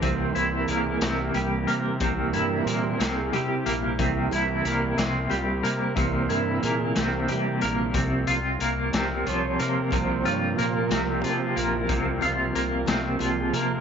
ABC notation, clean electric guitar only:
X:1
M:6/8
L:1/8
Q:3/8=61
K:none
V:1 name="Clean electric guitar" clef=bass
C, E _B, C, G, B, | C, E _B, C, G, B, | C, E _B, C, G, B, | C, E _B, C, G, B, |
C, F _B, C, F, B, | C, F _B, C, F, B, | C, F _B, C, F, B, |]